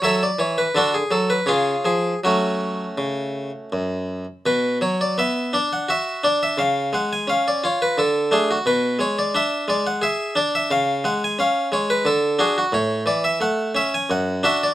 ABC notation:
X:1
M:3/4
L:1/16
Q:1/4=86
K:F#m
V:1 name="Harpsichord"
[Ace] d c B [DFA] G A B [^EGc]2 G2 | [A,CF]8 z4 | B2 c d e2 d f e2 d e | ^e2 f g e d c B A2 G F |
B2 c d e2 d f e2 d e | ^e2 f g e2 c B A2 G F | c2 d e f2 e g f2 e d |]
V:2 name="Harpsichord" clef=bass
F,2 E,2 D,2 F,2 C,2 ^E,2 | F,4 C,4 F,,4 | B,,2 F,2 B,2 D2 F2 D2 | C,2 G,2 C2 ^E2 D,2 [A,D]2 |
B,,2 G,2 D2 G,2 G2 D2 | C,2 G,2 C2 G,2 D,2 [DF]2 | A,,2 E,2 A,2 C2 F,,2 [DF]2 |]